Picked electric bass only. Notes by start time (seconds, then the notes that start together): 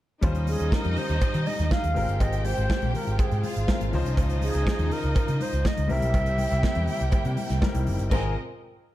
0.23 D#2
0.60 D#2
0.85 F2
1.10 D#2
1.22 muted picked electric bass stroke
1.35 D#3
1.60 D#2
1.84 D#2
1.96 G#1
2.09 G1
2.21 G#1
2.58 G#1
2.83 A#1
3.07 G#1
3.20 muted picked electric bass stroke
3.32 G#2
3.56 G#1
3.81 G#1
3.93 C#2
4.05 C2
4.18 C#2
4.55 C#2
4.79 D#2
5.04 C#2
5.16 muted picked electric bass stroke
5.29 C#3
5.53 C#2
5.78 C#2
5.90 C2
6.03 B1
6.14 C2
6.52 C2
6.76 E2
7.01 C2
7.13 muted picked electric bass stroke
7.25 C3
7.50 C2
7.75 C2
7.88 F#1
8.00 G1
8.12 G#1